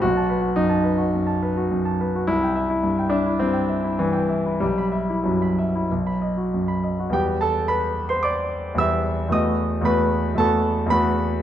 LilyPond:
\new Staff \with { instrumentName = "Grand piano" } { \time 4/4 \key e \minor \tempo 4 = 106 << { fis'4 dis'2. | e'4. d'8 c'4 e4 | g4 fis2~ fis8 r8 | <g' g''>8 <a' a''>8 <b' b''>8. <c'' c'''>16 <d'' d'''>4 <e'' e'''>4 |
<dis'' dis'''>4 <b' b''>4 <a' a''>4 <b' b''>4 | } \\ { b,,16 a''16 b'16 fis'16 fis,16 a''16 b'16 fis'16 fis,16 a''16 b'16 fis'16 fis,16 a''16 b'16 fis'16 | c,16 g''16 e''16 e'16 g,16 g''16 e''16 e'16 g,16 g''16 e''16 e'16 g,16 g''16 e''16 e'16 | b,,16 b''16 e''16 e'16 fis,16 b''16 e''16 e'16 b,,16 b''16 dis''16 fis'16 fis,16 b''16 dis''16 fis'16 | <e, g b>2. <e, g b g'>4 |
<e, a b fis'>4 <e, a b fis'>4 <e, a b fis'>4 <e, a b fis'>4 | } >> }